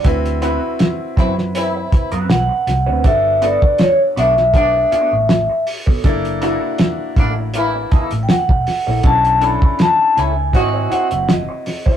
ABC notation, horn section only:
X:1
M:4/4
L:1/16
Q:"Swing 16ths" 1/4=80
K:D
V:1 name="Horn section"
z6 [E,=CE] z [E,CE]3 z4 z | z6 [A,B,D] z [A,B,D]3 z4 z | z6 [D,^A,D] z [E,A,E]3 z4 z | z6 [A,CE] z [^B,^DF]3 z4 z |]